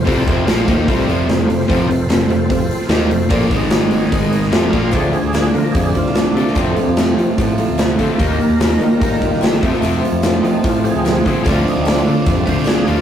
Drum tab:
HH |o-o-o-o-o-o-o-o-|o-o-o-o-o-o-o-o-|o-o-o-o-o-o-o-o-|o-o-o-o-o-o-o-o-|
SD |----o-------o--o|----o------oo---|----o------oo---|----o------oo--o|
BD |o-o---o-o-------|o-------o-------|o-o-----o-----o-|o-------o-o-----|

HH |o-o-o-o-o-o-o-o-|o-o-o-o-o-o-o-o-|o-o-o-o-o-o-o-o-|o-o-o-o-o-o-o-o-|
SD |----o-------o---|----o------oo--o|----o-------o---|----o------oo---|
BD |o-------o-----o-|o-------o-o---o-|--------o-----o-|o-------o-o-----|